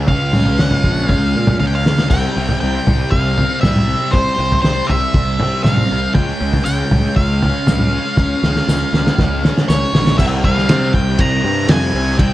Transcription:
0.07 picked electric bass C#2, distorted electric guitar C#3 G#3 C#4, lead electric guitar F5, kick, floor tom
0.33 picked electric bass C#2, distorted electric guitar G#3 C#4, mid tom
0.46 floor tom
0.59 picked electric bass C#2, distorted electric guitar C#3 G#3 C#4, lead electric guitar F#5, snare
0.71 floor tom
0.75 lead electric guitar F5
0.84 picked electric bass A#1, distorted electric guitar G#3 C#4, kick
0.90 lead electric guitar F#5
1.04 lead electric guitar F5
1.09 picked electric bass C#2, kick, floor tom
1.36 picked electric bass A#2
1.47 floor tom, mid tom
1.60 picked electric bass C#2, distorted electric guitar C#3 G#3 C#4, lead electric guitar F5, high tom
1.67 lead electric guitar G5
1.75 lead electric guitar F5
1.85 picked electric bass C#2, distorted electric guitar G#3 C#4, snare
1.99 snare
2.10 picked electric bass C2, distorted electric guitar C3 G3 C4, lead electric guitar G5, kick, floor tom, crash
2.36 picked electric bass C2, distorted electric guitar G3 C4
2.49 floor tom
2.61 picked electric bass C2, distorted electric guitar C3 G3 C4, lead electric guitar G5
2.87 picked electric bass C2, floor tom, mid tom
3.11 picked electric bass C2, lead electric guitar F5, kick
3.37 distorted electric guitar G3 C4, floor tom
3.61 picked electric bass C2, distorted electric guitar C3 G3 C4, lead electric guitar E5, snare, floor tom, mid tom
3.76 mid tom
3.88 distorted electric guitar G3 C4
4.12 picked electric bass C2, distorted electric guitar C3 G3 C4, lead electric guitar C5, kick, floor tom
4.38 picked electric bass C2, distorted electric guitar G3 C4
4.52 floor tom
4.62 picked electric bass C2, distorted electric guitar C3 G3 C4, lead electric guitar C5, snare
4.87 picked electric bass C2, lead electric guitar E5, floor tom
5.14 picked electric bass C2, kick
5.40 distorted electric guitar G3 C4, floor tom
5.63 picked electric bass C2, distorted electric guitar C3 G3 C4, lead electric guitar F5, snare, floor tom, mid tom
5.77 mid tom
5.91 picked electric bass C2, distorted electric guitar G3 C4
6.14 picked electric bass C#2, distorted electric guitar C#3 G#3 C#4, lead electric guitar G5, kick, floor tom
6.40 picked electric bass C#2, distorted electric guitar G#3 C#4
6.53 floor tom
6.65 picked electric bass C#2, distorted electric guitar C#3 G#3 C#4, lead electric guitar G5, tambourine
6.91 picked electric bass C#2, floor tom, mid tom
7.16 picked electric bass C#2, lead electric guitar F5, kick
7.42 distorted electric guitar G#3 C#4, floor tom
7.67 picked electric bass C#2, distorted electric guitar C#3 G#3 C#4, snare, floor tom, mid tom, tambourine
7.79 mid tom
7.93 distorted electric guitar G#3 C#4
8.17 picked electric bass C#2, distorted electric guitar C#3 G#3 C#4, kick, snare
8.43 picked electric bass C#2, distorted electric guitar G#3 C#4, snare
8.56 snare
8.68 picked electric bass C#2, distorted electric guitar C#3 G#3 C#4, snare, tambourine
8.93 picked electric bass C#2, snare
9.07 snare
9.19 picked electric bass C#2, kick, snare
9.44 distorted electric guitar G#3 C#4, snare
9.58 snare
9.68 picked electric bass C#2, distorted electric guitar C#3 G#3 C#4, lead electric guitar C#5, snare, tambourine
9.93 picked electric bass A#1, distorted electric guitar G#3 C#4, snare
10.07 snare
10.18 picked electric bass C2, distorted electric guitar C3 G3 C4, lead electric guitar E5, kick, crash
10.43 picked electric bass C2, distorted electric guitar G3 C4, lead electric guitar F5, kick
10.58 snare
10.69 distorted electric guitar C3 G3 C4, picked electric bass C3, snare, ride bell
10.94 picked electric bass C2, lead electric guitar G5, kick
11.19 picked electric bass C2, lead electric guitar A#5, kick, ride bell
11.44 picked electric bass G2, distorted electric guitar G3 C4
11.68 picked electric bass F2, distorted electric guitar C3 G3 C4, lead electric guitar G#5, snare, ride bell
11.93 picked electric bass C2, distorted electric guitar G3 C4
12.19 picked electric bass C2, distorted electric guitar C3 G3 C4, lead electric guitar G5, kick, ride bell

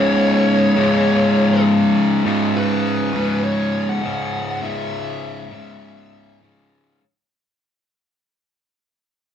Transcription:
Already playing: distorted electric guitar C#2 G#2 C#3, lead electric guitar C#5
0.76 distorted electric guitar C#2 G#2 C#3
2.24 distorted electric guitar C#2 G#2 C#3
2.57 lead electric guitar B4
3.13 distorted electric guitar C#2 G#2 C#3
3.43 lead electric guitar C#5
3.89 lead electric guitar F#5
4.02 distorted electric guitar C#2 G#2 C#3
4.61 distorted electric guitar C#2 G#2 C#3, lead electric guitar E5
5.51 distorted electric guitar C#2 G#2 C#3
6.41 distorted electric guitar C#2 G#2 C#3

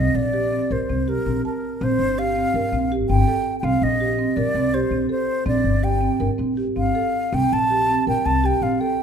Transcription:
Already playing: upright bass C2, marimba C4, flute D#5
0.14 upright bass A#1, flute D5
0.33 marimba G4
0.52 marimba C4
0.71 upright bass A#1, marimba A#4, flute C5
0.89 upright bass C2, marimba C4
1.00 flute C5
1.08 marimba G4, flute A#4
1.16 upright bass A#1
1.26 upright bass A#1, marimba C4
1.45 flute A#4, marimba A5
1.81 upright bass A#1, marimba C4, flute C5
1.99 upright bass G1
2.18 marimba G4, flute F5
2.36 marimba C4
2.54 upright bass G1, marimba A#4
2.72 upright bass A#1, marimba C4
2.92 marimba G4
3.00 upright bass G1
3.09 upright bass G1, marimba C4, flute G5
3.28 marimba A4
3.60 upright bass C2, marimba C4, flute G5
3.64 flute F5
3.82 upright bass A#1, flute D#5
4.00 marimba G4
4.19 marimba C4
4.36 upright bass A#1, marimba A#4, flute D5
4.54 upright bass C2, marimba C4
4.74 marimba G4, flute C5
4.82 upright bass A#1
4.91 upright bass A#1, marimba C4
5.09 marimba A4, flute C5
5.46 upright bass A#1, marimba C4, flute D5
5.64 upright bass G1
5.83 marimba G4, flute G5
6.01 marimba C4
6.20 upright bass G1, marimba A#4
6.38 upright bass A#1, marimba C4
6.57 marimba G4
6.66 upright bass G1
6.76 upright bass G1, marimba C4, flute F5
6.95 marimba A4
7.33 upright bass C2, marimba C4, flute G5
7.52 upright bass A#1, flute A5
7.70 marimba G4
7.89 marimba C4
8.07 upright bass A#1, marimba A#4, flute G5
8.26 upright bass C2, marimba C4, flute A5
8.44 marimba G4, flute G5
8.53 upright bass A#1
8.62 upright bass A#1, marimba C4, flute F5
8.80 marimba A4, flute G5

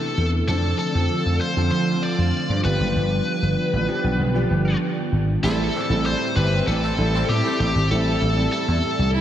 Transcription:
Already playing: analog synth pad C3 E3 A3 D4 E4, grand piano E3 A3 B3 C4 A4, lead electric guitar A4
0.17 slap bass E2
0.48 slap bass F2, analog synth pad D3 F3 C4 F4, grand piano F3 C4 D4 A4, lead electric guitar A4
0.79 lead electric guitar A4
0.94 slap bass F2, grand piano F3 C4 D4 A4
1.26 slap bass F2
1.41 lead electric guitar C5
1.56 slap bass F2, grand piano F3 C4 D4 A4
1.71 slap bass F3, lead electric guitar C5
2.03 lead electric guitar D5
2.18 slap bass F2
2.49 slap bass G2
2.64 slap bass G1, analog synth pad D3 G3 B3, grand piano F3 B3 D4 G4, lead electric guitar B4
2.80 slap bass F#1
2.96 slap bass G1
3.42 slap bass G1
3.73 slap bass A1
3.88 grand piano F3 B3 D4 G4
4.04 slap bass B1
4.19 slap bass B1
4.34 grand piano F3 B3 D4 G4
4.50 slap bass G1
5.12 slap bass G#1
5.42 slap bass A1, distorted electric guitar A2 E3 A3, horn section C3 A3 E4, grand piano G3 C4 E4 A4, analog synth pad C4 G4 E5 A5, lead electric guitar A4
5.74 horn section E3 C4 G4
5.89 slap bass A1, grand piano G3 C4 E4 A4
6.05 distorted electric guitar A2 E3 A3, horn section E3 C4 A4, lead electric guitar C5
6.36 slap bass G1, horn section E3 C4 G4, lead electric guitar B4
6.66 slap bass A1, distorted electric guitar A2 E3, horn section E3 C4 G4, lead electric guitar A4
6.70 distorted electric guitar A3
6.82 horn section E3 C4 A4
6.97 slap bass A1, grand piano G3 C4 E4 A4
7.13 horn section E3 C4 A4
7.29 slap bass A2, lead electric guitar G4
7.43 grand piano G3 C4 E4 A4, horn section A3 G4 C5
7.60 slap bass A1, lead electric guitar G4
7.75 slap bass G#1
7.90 slap bass A1, distorted electric guitar A2 E3 A3, grand piano G3 C4 E4 A4, lead electric guitar A4
8.21 slap bass A1
8.36 grand piano G3 C4 E4 A4
8.52 distorted electric guitar A2 E3 A3, lead electric guitar A4
8.68 slap bass E2
8.99 slap bass C2
9.13 distorted electric guitar A2 E3, violin section E4
9.17 distorted electric guitar A3

